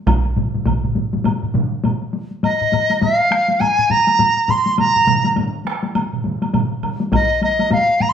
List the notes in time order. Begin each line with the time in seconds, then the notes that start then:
0.07 taiko, taiko low-mid, taiko mid, taiko high, high woodblock
0.25 taiko high
0.36 taiko low-mid, taiko mid, taiko high
0.54 taiko low-mid, taiko mid, taiko high
0.66 taiko, taiko low-mid, taiko mid, taiko high, high woodblock
0.84 taiko low-mid, taiko mid, taiko high
0.95 taiko low-mid, taiko mid, taiko high
1.13 taiko low-mid, taiko mid, taiko high
1.24 taiko low-mid, taiko mid, taiko high, high woodblock
1.43 taiko low-mid, taiko mid, taiko high
1.54 taiko low-mid, taiko mid, taiko high
1.72 taiko high
1.84 taiko low-mid, taiko mid, taiko high, high woodblock
2.02 taiko high
2.13 taiko high
2.31 taiko high
2.43 D#5, taiko low-mid, taiko high, high woodblock
2.61 taiko low-mid
2.72 taiko low-mid, taiko high, high woodblock
2.90 taiko high, high woodblock
3.01 F5, taiko low-mid, taiko high, high woodblock
3.31 taiko rim, taiko high
3.48 taiko high
3.60 G#5, taiko low-mid, taiko high, high woodblock
3.79 taiko low-mid
3.90 A#5, taiko low-mid, taiko high
4.07 taiko high, high woodblock
4.19 taiko low-mid, taiko high, high woodblock
4.48 C6, taiko low-mid, taiko high, high woodblock
4.66 taiko high
4.78 A#5, taiko mid, taiko high, high woodblock
4.96 taiko mid
5.07 taiko mid, taiko high, high woodblock
5.24 taiko high, high woodblock
5.36 taiko mid, taiko high, high woodblock
5.65 taiko rim, taiko high
5.83 taiko high
5.95 taiko mid, taiko high, high woodblock
6.13 taiko mid
6.24 taiko mid, taiko high
6.42 taiko high, high woodblock
6.54 taiko mid, taiko high, high woodblock
6.83 taiko mid, high woodblock
7.00 taiko high
7.12 D#5, taiko, taiko low-mid, taiko high, high woodblock
7.42 D#5, taiko high, high woodblock
7.59 taiko high, high woodblock
7.71 F5, taiko low-mid, taiko high, high woodblock
8.00 A#5, taiko low-mid, taiko high
8.09 C6